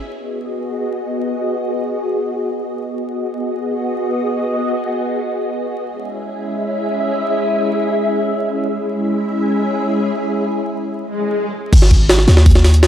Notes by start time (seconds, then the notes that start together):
Already playing: B3 F#4 G#4 D#5
2.89 B3 F#4 G#4 D#5
5.84 G#3 C#4 E4 G#4 E5
8.78 G#3 C#4 E4 G#4 E5
10.99 swell
11.73 G#1, kick, open hi-hat, crash
11.82 snare
11.91 kick, open hi-hat
12.09 snare, open hi-hat
12.19 snare
12.28 D#2, snare, open hi-hat
12.37 snare
12.46 kick, open hi-hat
12.55 snare
12.65 snare, open hi-hat
12.74 closed hi-hat
12.83 snare, open hi-hat